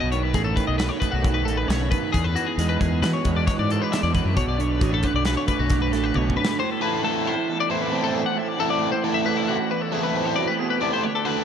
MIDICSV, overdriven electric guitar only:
0, 0, Header, 1, 2, 480
1, 0, Start_track
1, 0, Tempo, 445434
1, 2291, Time_signature, 5, 2, 24, 8
1, 12329, End_track
2, 0, Start_track
2, 0, Title_t, "Overdriven electric guitar"
2, 0, Program_c, 0, 29
2, 7343, Note_on_c, 0, 69, 104
2, 7350, Note_on_c, 0, 64, 99
2, 7354, Note_on_c, 0, 60, 79
2, 7357, Note_on_c, 0, 57, 79
2, 7562, Note_off_c, 0, 57, 0
2, 7568, Note_off_c, 0, 60, 0
2, 7575, Note_on_c, 0, 57, 71
2, 7576, Note_off_c, 0, 69, 0
2, 7578, Note_off_c, 0, 64, 0
2, 7581, Note_on_c, 0, 60, 88
2, 7589, Note_on_c, 0, 69, 80
2, 7591, Note_on_c, 0, 64, 85
2, 7888, Note_off_c, 0, 57, 0
2, 7891, Note_off_c, 0, 60, 0
2, 7895, Note_off_c, 0, 69, 0
2, 7896, Note_off_c, 0, 64, 0
2, 8297, Note_on_c, 0, 69, 98
2, 8305, Note_on_c, 0, 64, 91
2, 8310, Note_on_c, 0, 60, 99
2, 8319, Note_on_c, 0, 57, 84
2, 8525, Note_off_c, 0, 57, 0
2, 8531, Note_off_c, 0, 60, 0
2, 8536, Note_off_c, 0, 64, 0
2, 8537, Note_off_c, 0, 69, 0
2, 8538, Note_on_c, 0, 57, 78
2, 8544, Note_on_c, 0, 60, 86
2, 8548, Note_on_c, 0, 64, 89
2, 8554, Note_on_c, 0, 69, 84
2, 8848, Note_off_c, 0, 57, 0
2, 8851, Note_off_c, 0, 60, 0
2, 8854, Note_off_c, 0, 64, 0
2, 8857, Note_off_c, 0, 69, 0
2, 9265, Note_on_c, 0, 69, 91
2, 9273, Note_on_c, 0, 60, 82
2, 9274, Note_on_c, 0, 64, 85
2, 9284, Note_on_c, 0, 57, 79
2, 9570, Note_off_c, 0, 69, 0
2, 9575, Note_off_c, 0, 60, 0
2, 9575, Note_off_c, 0, 64, 0
2, 9580, Note_off_c, 0, 57, 0
2, 9745, Note_on_c, 0, 69, 92
2, 9752, Note_on_c, 0, 64, 94
2, 9754, Note_on_c, 0, 60, 81
2, 9759, Note_on_c, 0, 57, 73
2, 9978, Note_off_c, 0, 69, 0
2, 9981, Note_off_c, 0, 57, 0
2, 9981, Note_off_c, 0, 64, 0
2, 9982, Note_off_c, 0, 60, 0
2, 9993, Note_on_c, 0, 57, 80
2, 10002, Note_on_c, 0, 60, 83
2, 10008, Note_on_c, 0, 64, 78
2, 10008, Note_on_c, 0, 69, 98
2, 10293, Note_off_c, 0, 57, 0
2, 10298, Note_off_c, 0, 60, 0
2, 10301, Note_off_c, 0, 64, 0
2, 10301, Note_off_c, 0, 69, 0
2, 10694, Note_on_c, 0, 69, 91
2, 10696, Note_on_c, 0, 64, 94
2, 10700, Note_on_c, 0, 57, 86
2, 10701, Note_on_c, 0, 60, 89
2, 10923, Note_off_c, 0, 57, 0
2, 10931, Note_off_c, 0, 60, 0
2, 10931, Note_off_c, 0, 69, 0
2, 10932, Note_off_c, 0, 64, 0
2, 10936, Note_on_c, 0, 57, 69
2, 10944, Note_on_c, 0, 60, 79
2, 10948, Note_on_c, 0, 64, 90
2, 10952, Note_on_c, 0, 69, 86
2, 11243, Note_off_c, 0, 57, 0
2, 11247, Note_off_c, 0, 60, 0
2, 11249, Note_off_c, 0, 64, 0
2, 11251, Note_off_c, 0, 69, 0
2, 11650, Note_on_c, 0, 69, 105
2, 11651, Note_on_c, 0, 64, 86
2, 11656, Note_on_c, 0, 60, 79
2, 11665, Note_on_c, 0, 57, 81
2, 11886, Note_off_c, 0, 69, 0
2, 11887, Note_off_c, 0, 64, 0
2, 11890, Note_off_c, 0, 60, 0
2, 11894, Note_off_c, 0, 57, 0
2, 12126, Note_on_c, 0, 69, 107
2, 12128, Note_on_c, 0, 66, 94
2, 12134, Note_on_c, 0, 62, 90
2, 12136, Note_on_c, 0, 57, 77
2, 12329, Note_off_c, 0, 57, 0
2, 12329, Note_off_c, 0, 62, 0
2, 12329, Note_off_c, 0, 66, 0
2, 12329, Note_off_c, 0, 69, 0
2, 12329, End_track
0, 0, End_of_file